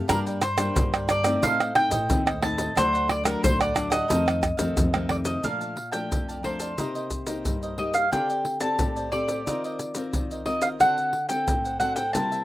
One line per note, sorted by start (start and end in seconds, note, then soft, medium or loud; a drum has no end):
0.08 0.66 G2 medium
0.08 0.73 G2 medium
0.08 0.41 G3 medium
0.08 0.41 A#3 medium
0.08 0.24 D4 medium
0.08 0.41 D4 medium
0.08 0.24 A#4 medium
0.08 0.18 A#4 medium
0.08 0.24 D5 medium
0.08 0.25 G5 medium
0.08 pandeiro medium
0.08 tamborim medium
0.08 maracas medium
0.08 surdo medium
0.26 0.41 A#4 soft
0.26 0.41 D5 medium
0.26 0.41 G5 medium
0.26 pandeiro soft
0.26 maracas soft
0.42 1.10 C5 medium
0.42 muted cavaquinho stroke soft
0.42 pandeiro medium
0.42 tamborim medium
0.42 maracas medium
0.57 1.20 G3 medium
0.57 1.20 A#3 medium
0.57 1.21 D4 medium
0.57 0.91 A#4 medium
0.57 0.91 D5 medium
0.57 0.90 G5 medium
0.57 pandeiro medium
0.57 tamborim medium
0.57 maracas medium
0.76 1.33 G2 medium
0.76 1.40 D3 medium
0.76 pandeiro medium
0.76 maracas medium
0.76 surdo loud
0.93 1.07 A#4 soft
0.93 1.08 D5 soft
0.93 1.08 G5 medium
0.93 pandeiro soft
0.93 tamborim medium
0.93 maracas soft
1.07 1.24 D4 medium
1.07 1.24 A#4 medium
1.07 1.23 D5 medium
1.07 1.44 D5 medium
1.07 1.22 G5 medium
1.07 pandeiro medium
1.07 tamborim medium
1.07 maracas medium
1.23 1.70 A3 medium
1.23 1.70 C4 medium
1.23 1.70 D#4 medium
1.23 1.41 A#4 medium
1.23 1.41 D5 medium
1.23 1.40 G5 medium
1.23 pandeiro medium
1.23 tamborim medium
1.23 maracas medium
1.42 2.06 A2 medium
1.42 1.85 A2 medium
1.42 1.58 D#4 medium
1.42 1.58 A4 medium
1.42 1.58 C5 medium
1.42 1.59 D#5 medium
1.42 1.74 F5 medium
1.42 pandeiro medium
1.42 maracas medium
1.42 surdo medium
1.60 1.74 A4 soft
1.60 1.75 C5 soft
1.60 1.75 D#5 medium
1.60 pandeiro soft
1.60 tamborim medium
1.60 maracas soft
1.75 1.95 A3 medium
1.75 1.95 C4 medium
1.75 1.96 D#4 medium
1.75 2.39 G5 medium
1.75 muted cavaquinho stroke soft
1.75 pandeiro medium
1.75 tamborim medium
1.90 2.06 A2 medium
1.90 2.25 A4 medium
1.90 2.25 C5 medium
1.90 2.24 D#5 medium
1.90 pandeiro medium
1.90 maracas medium
2.09 2.67 D#2 medium
2.09 2.73 A2 medium
2.09 2.29 A3 medium
2.09 2.29 C4 medium
2.09 2.29 D#4 medium
2.09 pandeiro medium
2.09 maracas medium
2.09 surdo medium
2.26 2.58 A4 soft
2.26 2.57 C5 soft
2.26 2.56 D#5 medium
2.26 pandeiro soft
2.26 tamborim medium
2.26 maracas soft
2.42 2.70 A3 medium
2.42 2.71 C4 soft
2.42 2.71 D#4 medium
2.42 2.77 A5 medium
2.42 pandeiro medium
2.42 tamborim medium
2.57 2.75 A4 soft
2.57 2.74 C5 soft
2.57 2.74 D#5 soft
2.57 pandeiro medium
2.57 maracas medium
2.75 3.33 D2 loud
2.75 3.40 D3 medium
2.75 3.21 F#3 medium
2.75 3.22 A3 medium
2.75 2.91 D4 medium
2.75 3.22 D4 medium
2.75 2.92 A4 medium
2.75 3.08 C5 medium
2.75 2.92 D5 medium
2.75 2.92 F#5 medium
2.75 pandeiro medium
2.75 tamborim medium
2.75 maracas medium
2.75 surdo medium
2.93 3.07 A4 soft
2.93 3.07 D5 soft
2.93 3.08 F#5 soft
2.93 pandeiro soft
2.93 maracas soft
3.08 3.25 D5 medium
3.08 muted cavaquinho stroke soft
3.08 pandeiro medium
3.08 tamborim medium
3.24 3.70 F#3 medium
3.24 3.71 A3 medium
3.24 3.71 D4 medium
3.24 3.58 A4 medium
3.24 3.42 A#4 medium
3.24 3.58 D5 medium
3.24 3.57 F#5 medium
3.24 pandeiro medium
3.24 tamborim medium
3.24 maracas medium
3.43 4.01 D2 medium
3.43 4.07 A2 medium
3.43 3.61 C5 medium
3.43 pandeiro medium
3.43 maracas medium
3.43 surdo loud
3.59 3.74 A4 soft
3.59 3.75 D5 soft
3.59 3.92 D5 medium
3.59 3.75 F#5 medium
3.59 pandeiro soft
3.59 tamborim medium
3.59 maracas soft
3.74 4.04 F#3 medium
3.74 4.04 A3 medium
3.74 3.91 D4 medium
3.74 4.04 D4 medium
3.74 3.91 A4 medium
3.74 3.90 D5 medium
3.74 3.89 F#5 medium
3.74 pandeiro medium
3.74 tamborim medium
3.74 maracas medium
3.90 4.08 A4 medium
3.90 4.08 D5 medium
3.90 5.06 D#5 medium
3.90 4.07 F#5 medium
3.90 pandeiro medium
3.90 tamborim medium
3.90 maracas medium
4.08 4.74 F2 medium
4.08 4.53 F2 medium
4.08 4.41 D#3 medium
4.08 4.42 A3 soft
4.08 4.42 C4 medium
4.08 4.25 D#4 medium
4.08 4.25 A4 medium
4.08 4.25 C5 medium
4.08 4.25 F5 medium
4.08 pandeiro medium
4.08 maracas medium
4.08 surdo medium
4.26 4.40 A4 soft
4.26 4.41 C5 soft
4.26 4.41 F5 medium
4.26 pandeiro soft
4.26 tamborim medium
4.26 maracas soft
4.41 muted cavaquinho stroke soft
4.41 pandeiro medium
4.41 tamborim medium
4.41 maracas medium
4.41 surdo medium
4.57 4.74 F2 medium
4.57 4.88 D#3 medium
4.57 4.88 A3 medium
4.57 4.88 C4 medium
4.57 4.92 A4 medium
4.57 4.92 C5 medium
4.57 4.91 F5 medium
4.57 pandeiro medium
4.57 maracas medium
4.77 5.34 F2 medium
4.77 5.41 C3 medium
4.77 pandeiro medium
4.77 maracas medium
4.77 surdo loud
4.93 5.39 D#3 medium
4.93 5.39 A3 medium
4.93 5.39 C4 medium
4.93 5.26 A4 soft
4.93 5.25 C5 soft
4.93 5.24 F5 soft
4.93 pandeiro soft
4.93 tamborim medium
4.93 maracas soft
5.09 5.15 D5 medium
5.09 pandeiro medium
5.09 tamborim medium
5.25 5.43 A4 soft
5.25 5.42 C5 soft
5.25 5.44 D#5 medium
5.25 5.42 F5 medium
5.25 pandeiro medium
5.25 maracas medium
5.43 6.08 A#2 medium
5.43 5.76 F3 soft
5.43 5.76 A3 soft
5.43 5.76 D4 soft
5.43 5.59 A#4 medium
5.43 5.60 D5 medium
5.43 5.91 F5 medium
5.43 5.60 F5 medium
5.43 5.59 A5 medium
5.43 pandeiro medium
5.43 maracas medium
5.43 surdo soft
5.60 5.75 D5 soft
5.60 5.76 F5 soft
5.60 5.76 A5 soft
5.60 pandeiro soft
5.60 maracas soft
5.76 muted cavaquinho stroke soft
5.76 pandeiro soft
5.91 6.39 F3 medium
5.91 6.39 A3 soft
5.91 6.39 D4 medium
5.91 6.26 D5 soft
5.91 6.26 F5 medium
5.91 6.45 G5 medium
5.91 6.25 A5 medium
5.91 pandeiro medium
5.91 maracas medium
6.12 6.75 F2 medium
6.12 pandeiro medium
6.12 maracas medium
6.12 surdo medium
6.28 6.42 D5 soft
6.28 6.43 F5 soft
6.28 6.44 A5 soft
6.28 pandeiro soft
6.28 maracas soft
6.43 6.73 F3 soft
6.43 6.73 A3 soft
6.43 6.73 D4 soft
6.43 6.59 A#4 soft
6.43 7.78 C5 medium
6.43 6.60 D5 soft
6.43 6.60 F5 soft
6.43 6.58 A5 soft
6.43 pandeiro medium
6.60 6.77 D5 soft
6.60 6.77 F5 medium
6.60 6.76 A5 medium
6.60 pandeiro medium
6.60 maracas medium
6.78 7.42 C3 medium
6.78 7.24 A#3 soft
6.78 6.93 D#4 medium
6.78 7.24 D#4 soft
6.78 7.24 G4 soft
6.78 6.94 A#4 medium
6.78 6.94 C5 medium
6.78 6.94 D#5 medium
6.78 pandeiro medium
6.78 maracas medium
6.78 surdo medium
6.95 7.10 A#4 soft
6.95 7.10 C5 soft
6.95 7.10 D#5 soft
6.95 pandeiro soft
6.95 maracas soft
7.10 muted cavaquinho stroke soft
7.10 pandeiro soft
7.10 maracas medium
7.10 surdo medium
7.26 7.73 A#3 medium
7.26 7.73 D#4 soft
7.26 7.73 G4 medium
7.26 7.61 A#4 soft
7.26 7.60 C5 soft
7.26 7.60 D#5 medium
7.26 pandeiro medium
7.26 maracas medium
7.45 8.09 G2 medium
7.45 pandeiro medium
7.45 maracas medium
7.45 surdo medium
7.63 7.95 A#4 soft
7.63 7.94 C5 soft
7.63 7.93 D#5 soft
7.63 pandeiro soft
7.63 maracas soft
7.78 8.07 A#3 soft
7.78 8.07 D#4 soft
7.78 8.07 G4 soft
7.78 7.94 D#5 medium
7.78 pandeiro soft
7.94 8.11 A#4 soft
7.94 8.11 C5 soft
7.94 8.10 D#5 soft
7.94 8.11 F5 medium
7.94 pandeiro medium
7.94 maracas medium
8.11 8.76 D3 medium
8.11 8.57 C4 soft
8.11 8.27 D4 medium
8.11 8.28 G4 medium
8.11 8.57 G4 soft
8.11 8.58 A4 soft
8.11 8.28 C5 medium
8.11 8.28 D5 medium
8.11 8.61 G5 medium
8.11 pandeiro medium
8.11 maracas medium
8.11 surdo medium
8.30 8.44 G4 soft
8.30 8.44 C5 soft
8.30 8.44 D5 soft
8.30 pandeiro soft
8.30 maracas soft
8.45 muted cavaquinho stroke soft
8.45 pandeiro soft
8.60 9.07 C4 medium
8.60 9.07 G4 medium
8.60 8.95 G4 soft
8.60 9.07 A4 medium
8.60 8.94 C5 medium
8.60 8.94 D5 medium
8.60 9.09 A5 medium
8.60 pandeiro medium
8.60 maracas medium
8.79 9.43 A2 medium
8.79 pandeiro medium
8.79 maracas medium
8.79 surdo medium
8.96 9.11 G4 soft
8.96 9.12 C5 soft
8.96 9.12 D5 soft
8.96 pandeiro soft
8.96 maracas soft
9.11 9.41 C4 soft
9.11 9.28 D4 soft
9.11 9.28 G4 soft
9.11 9.41 G4 soft
9.11 9.41 A4 medium
9.11 9.28 C5 medium
9.11 10.46 D5 medium
9.11 9.26 D5 soft
9.11 pandeiro soft
9.28 9.45 G4 soft
9.28 9.45 C5 medium
9.28 9.44 D5 medium
9.28 pandeiro medium
9.28 maracas medium
9.46 10.10 D#3 medium
9.46 9.92 C4 soft
9.46 9.62 D#4 medium
9.46 9.92 F4 soft
9.46 9.62 A#4 medium
9.46 9.92 A#4 soft
9.46 9.62 C5 medium
9.46 9.63 D#5 medium
9.46 pandeiro medium
9.46 maracas medium
9.46 surdo medium
9.64 9.79 A#4 soft
9.64 9.79 C5 soft
9.64 9.79 D#5 soft
9.64 pandeiro soft
9.64 maracas soft
9.79 muted cavaquinho stroke soft
9.79 pandeiro soft
9.79 maracas medium
9.95 10.41 C4 medium
9.95 10.41 F4 medium
9.95 10.41 A#4 medium
9.95 10.30 A#4 soft
9.95 10.29 C5 medium
9.95 pandeiro medium
9.95 maracas medium
10.13 10.78 D#3 medium
10.13 pandeiro medium
10.13 maracas medium
10.13 surdo medium
10.31 10.63 A#4 soft
10.31 10.62 C5 soft
10.31 10.61 D#5 soft
10.31 pandeiro soft
10.31 maracas soft
10.46 10.75 C4 soft
10.46 10.76 F4 soft
10.46 10.76 A#4 medium
10.46 10.62 D#5 medium
10.46 pandeiro medium
10.62 10.80 A#4 soft
10.62 10.79 C5 soft
10.62 10.78 D#5 soft
10.62 10.67 F5 medium
10.62 pandeiro medium
10.62 maracas medium
10.80 11.45 D3 medium
10.80 11.13 C4 soft
10.80 10.96 D4 medium
10.80 11.13 F#4 soft
10.80 10.97 A4 medium
10.80 11.13 A4 medium
10.80 10.97 C5 medium
10.80 11.28 F#5 medium
10.80 10.97 F#5 medium
10.80 pandeiro medium
10.80 maracas medium
10.80 surdo soft
10.98 11.13 A4 soft
10.98 11.14 C5 soft
10.98 11.13 F#5 soft
10.98 pandeiro soft
10.98 maracas soft
11.13 muted cavaquinho stroke soft
11.13 pandeiro soft
11.29 11.75 C4 medium
11.29 11.76 A4 medium
11.29 11.63 A4 medium
11.29 11.63 C5 medium
11.29 11.77 G5 medium
11.29 pandeiro medium
11.29 maracas medium
11.48 12.12 A2 medium
11.48 pandeiro medium
11.48 maracas medium
11.48 surdo loud
11.64 11.80 A4 soft
11.64 11.80 C5 soft
11.64 11.80 F#5 soft
11.64 pandeiro soft
11.64 maracas soft
11.80 12.01 C4 soft
11.80 11.96 D4 soft
11.80 12.01 F#4 medium
11.80 11.96 A4 soft
11.80 12.01 A4 medium
11.80 11.96 C5 soft
11.80 11.95 F#5 medium
11.80 pandeiro soft
11.80 maracas medium
11.96 12.13 A4 medium
11.96 12.13 C5 medium
11.96 12.12 F#5 medium
11.96 12.12 G5 medium
11.96 pandeiro medium
11.96 maracas medium
12.13 12.44 C3 medium
12.13 12.44 G3 soft
12.13 12.44 A#3 soft
12.13 12.30 E4 medium
12.13 12.44 E4 soft
12.13 12.30 A#4 medium
12.13 12.31 C5 medium
12.13 12.30 E5 medium
12.13 12.44 A5 medium
12.13 pandeiro medium
12.13 maracas medium
12.13 surdo medium
12.32 12.44 A#4 soft
12.32 12.44 C5 soft
12.32 12.44 E5 soft
12.32 pandeiro soft
12.32 maracas soft